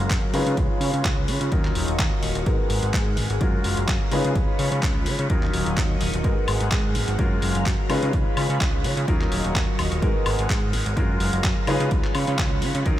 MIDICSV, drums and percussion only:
0, 0, Header, 1, 2, 480
1, 0, Start_track
1, 0, Tempo, 472441
1, 585, Time_signature, 4, 2, 24, 8
1, 13205, End_track
2, 0, Start_track
2, 0, Title_t, "Drums"
2, 102, Note_on_c, 9, 42, 50
2, 105, Note_on_c, 9, 39, 117
2, 107, Note_on_c, 9, 36, 111
2, 204, Note_off_c, 9, 42, 0
2, 206, Note_off_c, 9, 39, 0
2, 208, Note_off_c, 9, 36, 0
2, 341, Note_on_c, 9, 46, 99
2, 443, Note_off_c, 9, 46, 0
2, 473, Note_on_c, 9, 42, 70
2, 575, Note_off_c, 9, 42, 0
2, 582, Note_on_c, 9, 42, 52
2, 586, Note_on_c, 9, 36, 114
2, 684, Note_off_c, 9, 42, 0
2, 687, Note_off_c, 9, 36, 0
2, 822, Note_on_c, 9, 46, 104
2, 924, Note_off_c, 9, 46, 0
2, 952, Note_on_c, 9, 42, 63
2, 1054, Note_off_c, 9, 42, 0
2, 1062, Note_on_c, 9, 42, 54
2, 1064, Note_on_c, 9, 39, 121
2, 1066, Note_on_c, 9, 36, 117
2, 1163, Note_off_c, 9, 42, 0
2, 1166, Note_off_c, 9, 39, 0
2, 1167, Note_off_c, 9, 36, 0
2, 1301, Note_on_c, 9, 46, 108
2, 1403, Note_off_c, 9, 46, 0
2, 1432, Note_on_c, 9, 42, 65
2, 1533, Note_off_c, 9, 42, 0
2, 1542, Note_on_c, 9, 42, 49
2, 1545, Note_on_c, 9, 36, 111
2, 1644, Note_off_c, 9, 42, 0
2, 1647, Note_off_c, 9, 36, 0
2, 1675, Note_on_c, 9, 39, 35
2, 1777, Note_off_c, 9, 39, 0
2, 1781, Note_on_c, 9, 46, 107
2, 1883, Note_off_c, 9, 46, 0
2, 1913, Note_on_c, 9, 42, 65
2, 2014, Note_off_c, 9, 42, 0
2, 2022, Note_on_c, 9, 42, 51
2, 2025, Note_on_c, 9, 36, 117
2, 2025, Note_on_c, 9, 39, 118
2, 2124, Note_off_c, 9, 42, 0
2, 2126, Note_off_c, 9, 36, 0
2, 2127, Note_off_c, 9, 39, 0
2, 2262, Note_on_c, 9, 46, 104
2, 2363, Note_off_c, 9, 46, 0
2, 2392, Note_on_c, 9, 42, 66
2, 2493, Note_off_c, 9, 42, 0
2, 2503, Note_on_c, 9, 42, 49
2, 2505, Note_on_c, 9, 36, 122
2, 2604, Note_off_c, 9, 42, 0
2, 2606, Note_off_c, 9, 36, 0
2, 2742, Note_on_c, 9, 46, 107
2, 2843, Note_off_c, 9, 46, 0
2, 2872, Note_on_c, 9, 42, 61
2, 2974, Note_off_c, 9, 42, 0
2, 2982, Note_on_c, 9, 42, 49
2, 2985, Note_on_c, 9, 36, 123
2, 2985, Note_on_c, 9, 39, 125
2, 3084, Note_off_c, 9, 42, 0
2, 3087, Note_off_c, 9, 36, 0
2, 3087, Note_off_c, 9, 39, 0
2, 3220, Note_on_c, 9, 46, 105
2, 3322, Note_off_c, 9, 46, 0
2, 3352, Note_on_c, 9, 42, 65
2, 3454, Note_off_c, 9, 42, 0
2, 3462, Note_on_c, 9, 42, 50
2, 3466, Note_on_c, 9, 36, 116
2, 3563, Note_off_c, 9, 42, 0
2, 3568, Note_off_c, 9, 36, 0
2, 3701, Note_on_c, 9, 46, 105
2, 3802, Note_off_c, 9, 46, 0
2, 3833, Note_on_c, 9, 42, 62
2, 3934, Note_off_c, 9, 42, 0
2, 3943, Note_on_c, 9, 42, 50
2, 3946, Note_on_c, 9, 36, 120
2, 3946, Note_on_c, 9, 39, 116
2, 4044, Note_off_c, 9, 42, 0
2, 4047, Note_off_c, 9, 36, 0
2, 4047, Note_off_c, 9, 39, 0
2, 4181, Note_on_c, 9, 46, 100
2, 4282, Note_off_c, 9, 46, 0
2, 4313, Note_on_c, 9, 42, 65
2, 4415, Note_off_c, 9, 42, 0
2, 4424, Note_on_c, 9, 42, 48
2, 4426, Note_on_c, 9, 36, 118
2, 4526, Note_off_c, 9, 42, 0
2, 4527, Note_off_c, 9, 36, 0
2, 4663, Note_on_c, 9, 46, 107
2, 4764, Note_off_c, 9, 46, 0
2, 4793, Note_on_c, 9, 42, 59
2, 4895, Note_off_c, 9, 42, 0
2, 4903, Note_on_c, 9, 42, 50
2, 4905, Note_on_c, 9, 39, 116
2, 4906, Note_on_c, 9, 36, 122
2, 5004, Note_off_c, 9, 42, 0
2, 5007, Note_off_c, 9, 36, 0
2, 5007, Note_off_c, 9, 39, 0
2, 5141, Note_on_c, 9, 46, 108
2, 5242, Note_off_c, 9, 46, 0
2, 5272, Note_on_c, 9, 42, 62
2, 5373, Note_off_c, 9, 42, 0
2, 5382, Note_on_c, 9, 42, 49
2, 5385, Note_on_c, 9, 36, 114
2, 5484, Note_off_c, 9, 42, 0
2, 5487, Note_off_c, 9, 36, 0
2, 5517, Note_on_c, 9, 39, 35
2, 5619, Note_off_c, 9, 39, 0
2, 5624, Note_on_c, 9, 46, 110
2, 5725, Note_off_c, 9, 46, 0
2, 5755, Note_on_c, 9, 42, 64
2, 5857, Note_off_c, 9, 42, 0
2, 5864, Note_on_c, 9, 42, 49
2, 5865, Note_on_c, 9, 36, 116
2, 5866, Note_on_c, 9, 39, 115
2, 5965, Note_off_c, 9, 42, 0
2, 5967, Note_off_c, 9, 36, 0
2, 5968, Note_off_c, 9, 39, 0
2, 6103, Note_on_c, 9, 46, 107
2, 6204, Note_off_c, 9, 46, 0
2, 6234, Note_on_c, 9, 42, 62
2, 6335, Note_off_c, 9, 42, 0
2, 6342, Note_on_c, 9, 42, 48
2, 6345, Note_on_c, 9, 36, 111
2, 6443, Note_off_c, 9, 42, 0
2, 6446, Note_off_c, 9, 36, 0
2, 6581, Note_on_c, 9, 46, 104
2, 6581, Note_on_c, 9, 76, 80
2, 6683, Note_off_c, 9, 46, 0
2, 6683, Note_off_c, 9, 76, 0
2, 6711, Note_on_c, 9, 42, 62
2, 6813, Note_off_c, 9, 42, 0
2, 6820, Note_on_c, 9, 42, 52
2, 6822, Note_on_c, 9, 39, 115
2, 6824, Note_on_c, 9, 36, 117
2, 6921, Note_off_c, 9, 42, 0
2, 6924, Note_off_c, 9, 39, 0
2, 6926, Note_off_c, 9, 36, 0
2, 7061, Note_on_c, 9, 46, 101
2, 7162, Note_off_c, 9, 46, 0
2, 7192, Note_on_c, 9, 42, 64
2, 7293, Note_off_c, 9, 42, 0
2, 7302, Note_on_c, 9, 42, 47
2, 7304, Note_on_c, 9, 36, 112
2, 7404, Note_off_c, 9, 42, 0
2, 7406, Note_off_c, 9, 36, 0
2, 7541, Note_on_c, 9, 46, 103
2, 7642, Note_off_c, 9, 46, 0
2, 7672, Note_on_c, 9, 42, 62
2, 7773, Note_off_c, 9, 42, 0
2, 7781, Note_on_c, 9, 42, 51
2, 7784, Note_on_c, 9, 36, 111
2, 7784, Note_on_c, 9, 39, 110
2, 7883, Note_off_c, 9, 42, 0
2, 7885, Note_off_c, 9, 39, 0
2, 7886, Note_off_c, 9, 36, 0
2, 8022, Note_on_c, 9, 46, 96
2, 8022, Note_on_c, 9, 76, 67
2, 8124, Note_off_c, 9, 46, 0
2, 8124, Note_off_c, 9, 76, 0
2, 8154, Note_on_c, 9, 42, 63
2, 8255, Note_off_c, 9, 42, 0
2, 8263, Note_on_c, 9, 42, 51
2, 8265, Note_on_c, 9, 36, 111
2, 8365, Note_off_c, 9, 42, 0
2, 8367, Note_off_c, 9, 36, 0
2, 8504, Note_on_c, 9, 46, 100
2, 8504, Note_on_c, 9, 76, 77
2, 8605, Note_off_c, 9, 46, 0
2, 8605, Note_off_c, 9, 76, 0
2, 8636, Note_on_c, 9, 42, 62
2, 8738, Note_off_c, 9, 42, 0
2, 8745, Note_on_c, 9, 42, 51
2, 8746, Note_on_c, 9, 36, 116
2, 8747, Note_on_c, 9, 39, 115
2, 8846, Note_off_c, 9, 42, 0
2, 8847, Note_off_c, 9, 36, 0
2, 8849, Note_off_c, 9, 39, 0
2, 8985, Note_on_c, 9, 46, 99
2, 9087, Note_off_c, 9, 46, 0
2, 9117, Note_on_c, 9, 42, 63
2, 9218, Note_off_c, 9, 42, 0
2, 9225, Note_on_c, 9, 42, 51
2, 9226, Note_on_c, 9, 36, 111
2, 9327, Note_off_c, 9, 36, 0
2, 9327, Note_off_c, 9, 42, 0
2, 9360, Note_on_c, 9, 39, 34
2, 9461, Note_off_c, 9, 39, 0
2, 9467, Note_on_c, 9, 46, 100
2, 9568, Note_off_c, 9, 46, 0
2, 9597, Note_on_c, 9, 42, 63
2, 9699, Note_off_c, 9, 42, 0
2, 9706, Note_on_c, 9, 36, 108
2, 9707, Note_on_c, 9, 42, 52
2, 9710, Note_on_c, 9, 39, 110
2, 9807, Note_off_c, 9, 36, 0
2, 9809, Note_off_c, 9, 42, 0
2, 9812, Note_off_c, 9, 39, 0
2, 9945, Note_on_c, 9, 46, 98
2, 9945, Note_on_c, 9, 76, 62
2, 10047, Note_off_c, 9, 46, 0
2, 10047, Note_off_c, 9, 76, 0
2, 10076, Note_on_c, 9, 42, 66
2, 10178, Note_off_c, 9, 42, 0
2, 10185, Note_on_c, 9, 42, 52
2, 10186, Note_on_c, 9, 36, 108
2, 10286, Note_off_c, 9, 42, 0
2, 10287, Note_off_c, 9, 36, 0
2, 10423, Note_on_c, 9, 46, 103
2, 10423, Note_on_c, 9, 76, 81
2, 10525, Note_off_c, 9, 46, 0
2, 10525, Note_off_c, 9, 76, 0
2, 10554, Note_on_c, 9, 42, 69
2, 10656, Note_off_c, 9, 42, 0
2, 10664, Note_on_c, 9, 42, 54
2, 10666, Note_on_c, 9, 36, 110
2, 10667, Note_on_c, 9, 39, 122
2, 10766, Note_off_c, 9, 42, 0
2, 10767, Note_off_c, 9, 36, 0
2, 10769, Note_off_c, 9, 39, 0
2, 10904, Note_on_c, 9, 46, 100
2, 11006, Note_off_c, 9, 46, 0
2, 11036, Note_on_c, 9, 42, 65
2, 11137, Note_off_c, 9, 42, 0
2, 11144, Note_on_c, 9, 42, 54
2, 11146, Note_on_c, 9, 36, 109
2, 11245, Note_off_c, 9, 42, 0
2, 11248, Note_off_c, 9, 36, 0
2, 11382, Note_on_c, 9, 46, 102
2, 11483, Note_off_c, 9, 46, 0
2, 11512, Note_on_c, 9, 42, 68
2, 11613, Note_off_c, 9, 42, 0
2, 11621, Note_on_c, 9, 42, 54
2, 11623, Note_on_c, 9, 39, 116
2, 11627, Note_on_c, 9, 36, 111
2, 11722, Note_off_c, 9, 42, 0
2, 11725, Note_off_c, 9, 39, 0
2, 11728, Note_off_c, 9, 36, 0
2, 11860, Note_on_c, 9, 46, 97
2, 11860, Note_on_c, 9, 76, 62
2, 11962, Note_off_c, 9, 46, 0
2, 11962, Note_off_c, 9, 76, 0
2, 11992, Note_on_c, 9, 42, 70
2, 12094, Note_off_c, 9, 42, 0
2, 12102, Note_on_c, 9, 42, 55
2, 12106, Note_on_c, 9, 36, 113
2, 12203, Note_off_c, 9, 42, 0
2, 12208, Note_off_c, 9, 36, 0
2, 12235, Note_on_c, 9, 39, 37
2, 12336, Note_off_c, 9, 39, 0
2, 12341, Note_on_c, 9, 46, 104
2, 12341, Note_on_c, 9, 76, 75
2, 12442, Note_off_c, 9, 46, 0
2, 12442, Note_off_c, 9, 76, 0
2, 12470, Note_on_c, 9, 42, 68
2, 12572, Note_off_c, 9, 42, 0
2, 12582, Note_on_c, 9, 42, 56
2, 12584, Note_on_c, 9, 39, 123
2, 12585, Note_on_c, 9, 36, 114
2, 12683, Note_off_c, 9, 42, 0
2, 12686, Note_off_c, 9, 39, 0
2, 12687, Note_off_c, 9, 36, 0
2, 12821, Note_on_c, 9, 46, 100
2, 12922, Note_off_c, 9, 46, 0
2, 12952, Note_on_c, 9, 42, 69
2, 13053, Note_off_c, 9, 42, 0
2, 13062, Note_on_c, 9, 42, 55
2, 13065, Note_on_c, 9, 36, 108
2, 13163, Note_off_c, 9, 42, 0
2, 13167, Note_off_c, 9, 36, 0
2, 13205, End_track
0, 0, End_of_file